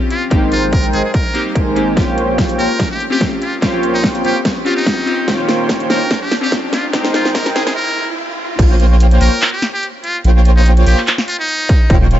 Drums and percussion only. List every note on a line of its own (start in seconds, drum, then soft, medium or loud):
0.10 closed hi-hat medium
0.31 kick medium
0.31 closed hi-hat medium
0.52 closed hi-hat medium
0.73 kick medium
0.73 closed hi-hat medium
0.84 closed hi-hat medium
0.93 closed hi-hat medium
1.14 kick medium
1.14 closed hi-hat medium
1.35 closed hi-hat medium
1.55 kick medium
1.55 closed hi-hat medium
1.76 closed hi-hat medium
1.97 kick loud
1.97 snare soft
1.97 closed hi-hat medium
2.18 closed hi-hat medium
2.38 kick medium
2.38 snare medium
2.38 closed hi-hat medium
2.49 closed hi-hat medium
2.59 closed hi-hat medium
2.79 kick medium
2.79 snare soft
2.79 closed hi-hat medium
3.00 closed hi-hat medium
3.21 kick medium
3.21 snare medium
3.21 closed hi-hat medium
3.42 closed hi-hat medium
3.62 kick loud
3.62 snare medium
3.62 closed hi-hat medium
3.83 closed hi-hat medium
4.04 kick loud
4.04 snare medium
4.04 closed hi-hat medium
4.15 closed hi-hat medium
4.25 closed hi-hat medium
4.45 kick loud
4.45 snare medium
4.45 closed hi-hat medium
4.66 closed hi-hat medium
4.86 kick medium
4.86 snare medium
4.86 closed hi-hat medium
5.07 closed hi-hat medium
5.28 kick loud
5.28 snare medium
5.28 closed hi-hat medium
5.49 snare medium
5.49 closed hi-hat medium
5.69 kick loud
5.69 snare medium
5.69 closed hi-hat medium
5.80 closed hi-hat medium
5.90 snare medium
5.90 closed hi-hat medium
6.11 kick loud
6.11 snare medium
6.11 closed hi-hat medium
6.32 snare medium
6.32 closed hi-hat medium
6.52 kick medium
6.52 snare medium
6.52 closed hi-hat medium
6.73 snare medium
6.73 closed hi-hat medium
6.93 kick loud
6.93 snare medium
6.93 closed hi-hat medium
7.05 snare medium
7.14 snare loud
7.14 closed hi-hat medium
7.25 snare medium
7.35 kick loud
7.35 snare loud
7.35 closed hi-hat medium
7.46 snare medium
7.46 closed hi-hat medium
7.56 snare loud
7.56 closed hi-hat medium
7.67 snare medium
8.59 kick loud
8.59 closed hi-hat medium
8.59 crash loud
8.80 closed hi-hat medium
9.00 closed hi-hat medium
9.11 closed hi-hat medium
9.21 open hi-hat loud
9.42 clap loud
9.42 closed hi-hat medium
9.62 snare medium
9.62 closed hi-hat medium
9.83 closed hi-hat medium
10.04 closed hi-hat medium
10.24 closed hi-hat medium
10.45 closed hi-hat medium
10.66 closed hi-hat medium
10.77 closed hi-hat medium
10.87 open hi-hat medium
10.98 clap soft
11.07 clap loud
11.07 closed hi-hat medium
11.18 snare medium
11.28 closed hi-hat medium
11.49 closed hi-hat medium
11.69 kick loud
11.69 closed hi-hat medium
11.90 kick loud
11.90 closed hi-hat medium
12.11 closed hi-hat medium